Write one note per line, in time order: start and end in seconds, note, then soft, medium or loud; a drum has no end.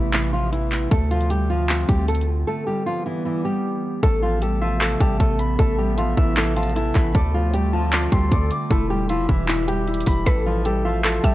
0.00 0.87 A1 loud
0.00 0.88 C3 medium
0.00 0.12 E3 medium
0.00 0.88 A3 medium
0.00 0.87 B3 medium
0.00 0.11 E4 medium
0.00 0.88 E5 medium
0.13 0.31 E3 medium
0.13 0.31 E4 medium
0.13 clap loud
0.13 closed hi-hat medium
0.33 0.51 F3 medium
0.33 0.51 F4 medium
0.52 0.89 E3 medium
0.52 0.89 E4 medium
0.52 closed hi-hat medium
0.71 clap medium
0.71 closed hi-hat medium
0.91 1.85 D2 loud
0.91 2.46 D3 medium
0.91 2.46 A3 medium
0.91 1.09 A3 medium
0.91 2.46 C4 medium
0.91 2.46 F4 medium
0.91 1.09 A4 medium
0.91 kick loud
0.91 closed hi-hat medium
1.11 1.29 F3 medium
1.11 1.28 F4 medium
1.11 closed hi-hat medium
1.21 closed hi-hat medium
1.30 1.48 G3 medium
1.30 1.48 G4 medium
1.30 closed hi-hat medium
1.50 1.87 F3 medium
1.50 1.86 F4 medium
1.69 clap loud
1.69 closed hi-hat medium
1.89 2.45 D2 loud
1.89 2.07 G3 medium
1.89 2.06 G4 medium
1.89 kick loud
1.89 closed hi-hat medium
2.08 2.26 A3 medium
2.08 2.26 A4 medium
2.08 closed hi-hat medium
2.15 closed hi-hat medium
2.21 closed hi-hat soft
2.47 4.02 E3 medium
2.47 4.02 G3 medium
2.47 2.65 A3 medium
2.47 4.02 B3 medium
2.47 4.02 G4 medium
2.47 2.65 A4 medium
2.67 2.85 G3 medium
2.67 2.84 G4 medium
2.86 3.04 F3 medium
2.86 3.04 F4 medium
3.06 3.24 E3 medium
3.06 3.23 E4 medium
3.25 3.43 E3 medium
3.25 3.43 E4 medium
3.45 4.00 G3 medium
3.45 4.00 G4 medium
4.03 4.97 A1 loud
4.03 7.12 C3 medium
4.03 8.67 A3 medium
4.03 4.21 A3 medium
4.03 7.12 B3 medium
4.03 4.42 A4 medium
4.03 4.21 A4 medium
4.03 7.12 E5 medium
4.03 kick loud
4.03 closed hi-hat medium
4.22 4.41 F3 medium
4.22 4.40 F4 medium
4.42 4.60 G3 medium
4.42 4.60 G4 medium
4.42 4.80 A4 medium
4.42 closed hi-hat medium
4.61 4.99 F3 medium
4.61 4.98 F4 medium
4.61 6.17 E5 medium
4.81 5.20 A4 medium
4.81 clap loud
4.81 closed hi-hat medium
5.00 5.19 A1 loud
5.00 5.19 G3 medium
5.00 5.18 G4 medium
5.00 6.46 A5 medium
5.00 kick loud
5.00 closed hi-hat medium
5.20 5.57 A1 loud
5.20 5.38 A3 medium
5.20 5.38 A4 medium
5.20 5.58 A4 medium
5.20 kick loud
5.20 closed hi-hat medium
5.39 6.74 B5 medium
5.39 closed hi-hat medium
5.59 6.15 A1 loud
5.59 5.77 A3 medium
5.59 5.97 A4 loud
5.59 5.77 A4 medium
5.59 kick loud
5.59 closed hi-hat medium
5.78 5.96 G3 medium
5.78 5.96 G4 medium
5.97 6.16 F3 medium
5.97 6.16 F4 medium
5.97 6.37 A4 medium
5.97 closed hi-hat medium
6.17 6.92 A1 loud
6.17 6.35 E3 medium
6.17 6.35 E4 medium
6.17 7.89 E5 medium
6.17 kick loud
6.37 6.55 E3 medium
6.37 6.54 E4 medium
6.37 6.75 A4 loud
6.37 clap loud
6.37 closed hi-hat medium
6.56 6.74 F3 medium
6.56 6.74 F4 medium
6.56 7.73 A5 medium
6.56 closed hi-hat medium
6.63 closed hi-hat medium
6.69 closed hi-hat soft
6.75 7.13 E3 medium
6.75 7.12 E4 medium
6.75 8.95 A4 medium
6.75 closed hi-hat medium
6.95 7.14 A1 loud
6.95 8.18 B5 medium
6.95 kick loud
6.95 clap medium
7.15 8.08 D2 loud
7.15 8.69 D3 medium
7.15 7.33 A3 medium
7.15 8.69 C4 medium
7.15 8.69 F4 medium
7.15 7.32 A4 medium
7.15 7.53 D5 loud
7.15 kick loud
7.15 closed hi-hat medium
7.34 7.52 F3 medium
7.34 7.52 F4 medium
7.53 7.72 G3 medium
7.53 7.71 G4 medium
7.53 7.93 D5 medium
7.53 closed hi-hat medium
7.73 8.10 F3 medium
7.73 8.10 F4 medium
7.73 9.18 A5 medium
7.93 8.31 D5 medium
7.93 clap loud
7.93 closed hi-hat medium
8.12 8.31 D2 loud
8.12 8.30 G3 medium
8.12 8.30 G4 medium
8.12 9.43 C6 medium
8.12 kick loud
8.12 closed hi-hat medium
8.32 8.50 D2 loud
8.32 8.50 A3 medium
8.32 8.49 A4 medium
8.32 10.16 D5 medium
8.32 kick loud
8.32 closed hi-hat medium
8.51 9.73 D6 medium
8.51 closed hi-hat medium
8.71 9.27 E1 loud
8.71 11.35 B2 medium
8.71 10.25 E3 medium
8.71 10.25 G3 medium
8.71 8.89 A3 medium
8.71 9.09 E4 medium
8.71 10.25 G4 medium
8.71 8.88 A4 medium
8.71 kick loud
8.71 closed hi-hat medium
8.90 9.08 G3 medium
8.90 9.08 G4 medium
9.09 9.28 F3 medium
9.09 9.48 E4 medium
9.09 9.27 F4 medium
9.09 closed hi-hat medium
9.29 10.04 E1 loud
9.29 9.47 E3 medium
9.29 9.47 E4 medium
9.29 10.84 E5 medium
9.29 kick loud
9.48 9.67 E3 medium
9.48 9.87 E4 medium
9.48 9.66 E4 medium
9.48 clap loud
9.48 closed hi-hat medium
9.68 10.23 G3 medium
9.68 10.23 G4 medium
9.68 11.23 G5 medium
9.68 closed hi-hat medium
9.87 11.35 E4 medium
9.87 closed hi-hat medium
9.94 closed hi-hat medium
10.01 closed hi-hat medium
10.06 10.26 E1 loud
10.06 11.35 B5 loud
10.06 kick loud
10.06 open hi-hat medium
10.26 11.20 A1 loud
10.26 11.35 C3 medium
10.26 11.35 A3 medium
10.26 10.45 A3 medium
10.26 10.65 A4 medium
10.26 10.44 A4 medium
10.26 11.20 B4 loud
10.26 11.35 E5 medium
10.26 kick loud
10.26 closed hi-hat medium
10.46 10.64 F3 medium
10.46 10.64 F4 medium
10.65 10.84 G3 medium
10.65 10.83 G4 medium
10.65 11.04 A4 medium
10.65 closed hi-hat medium
10.85 11.22 F3 medium
10.85 11.22 F4 medium
10.85 11.35 E5 medium
11.04 11.35 A4 medium
11.04 clap loud
11.04 closed hi-hat medium
11.24 11.35 A1 loud
11.24 11.35 G3 medium
11.24 11.35 G4 medium
11.24 11.35 E5 medium
11.24 11.35 A5 medium
11.24 kick loud
11.24 closed hi-hat medium